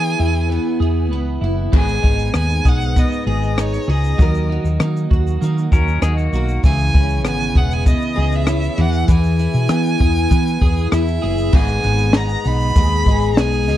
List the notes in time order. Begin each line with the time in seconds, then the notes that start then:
Already playing: E3 B3 E4 G#4 G#5
0.19 E2 E4
0.52 B3
0.80 E2 E4 G#4
1.11 C#2 B3
1.41 F#1 E4
1.72 G#1 G#2 B3 G#4, kick, crash
1.77 G#5
1.88 shaker
2.04 G#1 D#4, kick
2.19 shaker
2.34 D#2 B3 G#5, cross-stick, shaker
2.50 shaker
2.65 B1 D#4 G#4 F#5, kick, shaker
2.81 shaker
2.96 B3 D#5, kick, shaker
3.12 shaker
3.26 G#1 G#4 D#5
3.43 shaker
3.58 D#4 C#5, cross-stick, shaker
3.73 shaker
3.88 C#2 G#4 D#5
4.04 shaker
4.18 D#2 D#3 F#3 A#4, kick, shaker
4.35 shaker
4.50 D#4 F#4
4.64 D#2, shaker
4.79 D#3 A#3 D#4, cross-stick, shaker
4.97 shaker
5.11 D#2 F#4, kick
5.27 shaker
5.41 D#3 A#3 D#4, shaker
5.58 shaker
5.72 D#2 C#4 F#4 A#4, kick, shaker
5.88 shaker
6.01 D#2 D#4 F#4 G#4, cross-stick, shaker
6.17 A#3 F#4, shaker
6.32 B1 F#4 A#4, shaker
6.49 shaker
6.64 C#2 C#3 E3 G#4 G#5, kick, shaker
6.79 shaker
6.94 C#2 C#4 E4, kick
7.09 shaker
7.25 G#1 B3 G#5, cross-stick, shaker
7.41 shaker
7.55 E1 E4 G#4 F#5, kick
7.71 G#5, shaker
7.86 B3 D#5, kick, shaker
8.01 shaker
8.16 C#2 G#4
8.32 E5, shaker
8.47 C#4 E4, cross-stick, shaker
8.63 shaker
8.78 E2 E3 F#5
8.93 shaker
9.08 E2 E3 G#4, kick, shaker
9.12 G#5
9.24 shaker
9.39 E4, shaker
9.54 B2, shaker
9.69 E3 B3, cross-stick, shaker
9.86 shaker
10.00 E2 E4 G#4, kick
10.16 shaker
10.31 E3 B3, kick, shaker
10.47 shaker
10.61 E2 G#4, kick
10.77 shaker
10.92 E2 E4 E5, cross-stick, shaker
11.08 shaker
11.23 F#1 G#4, cross-stick
11.38 shaker
11.53 G#1 G#2 B3 G#4 G#5, kick, crash
11.68 shaker
11.83 G#1 B3 D#4, shaker
11.98 shaker
12.13 B3 G#4 A#5, snare, shaker
12.29 shaker
12.44 B1 D#4 B5, shaker
12.60 shaker
12.76 D#2 G#3 G#4, kick, shaker
12.91 shaker
13.06 G#1 D#4 G#4, kick
13.22 shaker
13.37 B1 B3 G#4 G#5, snare, shaker
13.52 shaker
13.68 C#2 D#4 G#4, snare, shaker